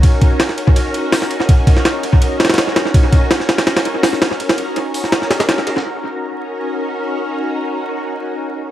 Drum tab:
RD |x---x---x---x---x---x-------x---|x---x---x---x---x---xxxxx---x---|x---x---x---x-x-x-x-x-------x---|x-x-x---x-------x---x-x-x---x---|
HH |------------------------o-------|--------------------------------|------------------------o-------|------------o-------------------|
SD |--------o-o-------------o-o---o-|------o-o-----------ooooo-o-o-o-|--------o-o-o-o-o-o-----o-o-o-o-|--o-----------o-o-o-o-o-o-o---o-|
BD |o---o---------o-----------------|o---o---------o-----------------|o---o---------------------------|--------------------------------|

RD |--------------------------------|--------------------------------|
HH |--------------------------------|--------------------------------|
SD |--------------------------------|--------------------------------|
BD |--------------------------------|--------------------------------|